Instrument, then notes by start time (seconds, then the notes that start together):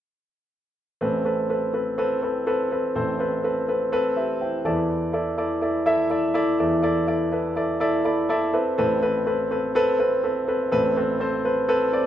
grand piano
1.01 A1 A2 C4 A4 B4
1.25 C4 A4 B4
1.49 C4 A4 B4
1.73 C4 A4 B4
1.98 C4 A4 B4
2.22 C4 A4 B4
2.47 C4 A4 B4
2.71 C4 A4 B4
2.95 A1 A2 C4 A4 C5
3.19 C4 A4 B4
3.44 C4 A4 B4
3.68 C4 A4 B4
3.92 C4 A4 B4
4.16 G4 E5
4.41 E4 C5 G5
4.65 E2 E3 E4 A4 D5 A5
5.13 E4 A4 D5
5.38 E4 A4 D5
5.62 E4 A4 D5
5.86 E4 A4 E5
6.10 E4 A4 D5
6.34 E4 A4 D5
6.59 E2 E3 E4 A4 D5
6.83 E4 A4 D5
7.07 E4 A4 D5
7.32 E4 A4 B4
7.56 E4 A4 D5
7.80 E4 A4 D5
8.05 E4 A4 D5 B5
8.29 E4 A4 D5 A5
8.53 C4 A4 B4 E5
8.78 A1 A2 C4 A4 B4
9.02 C4 A4 B4
9.26 C4 A4 B4
9.51 C4 A4 B4
9.75 C4 A4 B4
9.99 C4 A4 B4
10.23 C4 A4 B4
10.48 C4 A4 B4
10.72 A1 A2 C4 A4 B4
10.96 C4 A4 B4
11.20 C4 A4 C5
11.45 C4 A4 B4
11.68 C4 A4 B4
11.92 C4 A4 D5